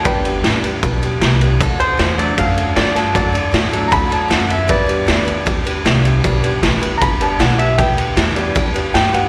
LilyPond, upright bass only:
\new Staff \with { instrumentName = "Upright bass" } { \clef bass \time 4/4 \key g \major \tempo 4 = 155 g,,4 a,,8 r8 b,,4 c,4 | r4 e,4 fis,4 g,4 | fis,4 a,4 d,8 r8 fis,4 | g,4 e,8 r8 d,4 c,4 |
b,,4 a,,8 r8 g,,4 b,,4 | d,4 e,4 fis,8 r8 g,4 | }